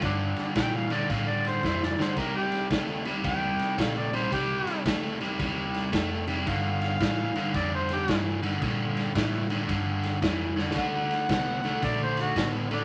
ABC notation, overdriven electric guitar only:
X:1
M:4/4
L:1/8
Q:"Swing" 1/4=112
K:Gm
V:1 name="Overdriven electric guitar" clef=bass
[G,,D,]2 [G,,=E,] [G,,D,] [G,,D,]2 [G,,E,] [G,,D,] | [C,G,]2 [C,A,] [C,G,] [C,G,]2 [C,A,] [C,G,] | [C,G,]2 [C,A,] [C,G,] [C,G,]2 [C,A,] [C,G,] | [G,,D,]2 [G,,=E,] [G,,D,] [G,,D,]2 [G,,E,] [G,,D,] |
[G,,D,]2 [G,,=E,] [G,,D,] [G,,D,]2 [G,,E,] [G,,D,] | [D,A,]2 [D,=B,] [D,A,] [D,A,]2 [D,B,] [D,A,] |]